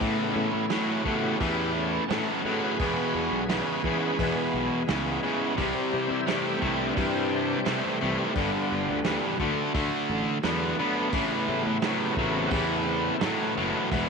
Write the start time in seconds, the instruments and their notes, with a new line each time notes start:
Already playing: tonewheel organ A3
0.00 steel-string acoustic guitar A2 E3 B3 C#4 E4, distorted electric guitar A2 E3, fingered electric bass A2, tonewheel organ C#3 B3, kick, open hi-hat
0.29 tonewheel organ D#4 E4
0.33 fingered electric bass A2, tonewheel organ C#4, steel-string acoustic guitar C#4 E4
0.37 steel-string acoustic guitar B3
0.53 fingered electric bass A2
0.68 distorted electric guitar A2 F#3, steel-string acoustic guitar E3 B3 C#4, tonewheel organ C#4 E4, snare, open hi-hat
1.03 distorted electric guitar A2 F#3, fingered electric bass A2, tonewheel organ C#3 A3 B3 E4 G4, kick
1.38 fingered electric bass E2, steel-string acoustic guitar A2 E3 B3 C#4 E4, distorted electric guitar A2 E3, tonewheel organ E4 G4, kick, open hi-hat
1.76 tonewheel organ C#4 A4
2.09 fingered electric bass A2, distorted electric guitar A2 F#3, steel-string acoustic guitar E3 B3 C#4 E4, tonewheel organ C#4 A4, snare, open hi-hat
2.44 fingered electric bass A2, distorted electric guitar A2 F#3, steel-string acoustic guitar C#4 E4, tonewheel organ G#4 B4
2.49 steel-string acoustic guitar B3
2.79 fingered electric bass E2, distorted electric guitar E2 B2, steel-string acoustic guitar E2 B2 E3 G#3 B3, kick, open hi-hat
2.84 steel-string acoustic guitar E4
3.14 fingered electric bass E2, steel-string acoustic guitar E3 B3 E4
3.31 fingered electric bass B1
3.48 distorted electric guitar E2 C#3, steel-string acoustic guitar E3 G#3 B3 E4, snare, open hi-hat
3.83 distorted electric guitar E2 C#3, tonewheel organ E3 G#3 B3, fingered electric bass E3, kick
4.18 steel-string acoustic guitar E2 B2 E3 G#3 B3 E4, fingered electric bass E2, distorted electric guitar E2 B2, kick, open hi-hat
4.54 fingered electric bass B1
4.87 fingered electric bass C#2, distorted electric guitar E2 C#3, steel-string acoustic guitar E3 G#3 B3 E4, snare, open hi-hat
5.22 distorted electric guitar E2 C#3, steel-string acoustic guitar E3 G#3 B3 E4
5.57 fingered electric bass C2, distorted electric guitar C3 G3, steel-string acoustic guitar C3 E3 G3 C4 E4, tonewheel organ E3 G3 C4, kick, open hi-hat
5.92 fingered electric bass C3, steel-string acoustic guitar G3 C4 E4, tonewheel organ G4
6.10 fingered electric bass C3, tonewheel organ E4
6.26 distorted electric guitar C3 A3, steel-string acoustic guitar E3 G3 C4 E4, tonewheel organ D4, snare, open hi-hat
6.43 tonewheel organ F#4 G4
6.61 fingered electric bass C2, distorted electric guitar C3 A3, kick
6.65 tonewheel organ E4
6.83 tonewheel organ D4
6.96 fingered electric bass G2, distorted electric guitar C3 G3, steel-string acoustic guitar C3 E3 G3 C4 E4, tonewheel organ F#4, kick, open hi-hat
7.01 tonewheel organ G4
7.15 tonewheel organ E4
7.31 tonewheel organ D4
7.65 distorted electric guitar C3 A3, fingered electric bass C3, steel-string acoustic guitar E3 G3 C4 E4, tonewheel organ C4, snare, open hi-hat
8.01 fingered electric bass C2, distorted electric guitar C3 A3, steel-string acoustic guitar G3 C4 E4
8.34 fingered electric bass G1, steel-string acoustic guitar G2 D3 G3 B3 D4, distorted electric guitar G2 D3, tonewheel organ D3 G3 B3, kick, open hi-hat
8.38 steel-string acoustic guitar G4
8.71 fingered electric bass G1, steel-string acoustic guitar G3 B3 D4 G4
8.89 fingered electric bass D2
9.04 distorted electric guitar G2 E3, steel-string acoustic guitar G3 B3 D4, snare, open hi-hat
9.09 steel-string acoustic guitar G4
9.40 fingered electric bass D2, distorted electric guitar D3 A3, steel-string acoustic guitar D3 F#3 A3 D4 F#4, kick
9.74 fingered electric bass D2, distorted electric guitar D3 A3, kick, open hi-hat
10.09 fingered electric bass A1
10.42 fingered electric bass E2, tonewheel organ D3 F#3 A3, distorted electric guitar D3 B3, steel-string acoustic guitar F#3 A3, snare, open hi-hat
10.47 steel-string acoustic guitar D4 F#4
10.77 distorted electric guitar D3 B3, steel-string acoustic guitar A3 D4 F#4
11.12 fingered electric bass A1, steel-string acoustic guitar A2 E3 B3 C#4 E4, distorted electric guitar A2 E3, tonewheel organ C#3 A3 B3, kick, open hi-hat
11.48 fingered electric bass A2, steel-string acoustic guitar B3 C#4 E4, tonewheel organ G4
11.65 fingered electric bass A2, tonewheel organ E4
11.79 steel-string acoustic guitar E3 B3, tonewheel organ C4, snare, open hi-hat
11.83 distorted electric guitar A2 F#3, steel-string acoustic guitar C#4 E4
11.93 tonewheel organ F#4
11.99 tonewheel organ G4
12.17 fingered electric bass A1, distorted electric guitar A2 F#3, tonewheel organ E4, kick
12.36 tonewheel organ C4
12.47 steel-string acoustic guitar A2, tonewheel organ F#4 G4, open hi-hat
12.51 fingered electric bass E2, distorted electric guitar A2 E3, steel-string acoustic guitar E3 B3 C#4 E4, kick
12.68 tonewheel organ E4
12.83 tonewheel organ C#3 A3 B3 C4
13.18 distorted electric guitar A2, steel-string acoustic guitar E3, tonewheel organ A3, snare, open hi-hat
13.23 fingered electric bass A2, distorted electric guitar F#3, steel-string acoustic guitar B3 C#4 E4
13.57 fingered electric bass F#1, distorted electric guitar A2 F#3
13.92 fingered electric bass E1, distorted electric guitar E2 B2, steel-string acoustic guitar E2 B2 E3 G#3 B3 E4, tonewheel organ E3 G#3 B3, kick, open hi-hat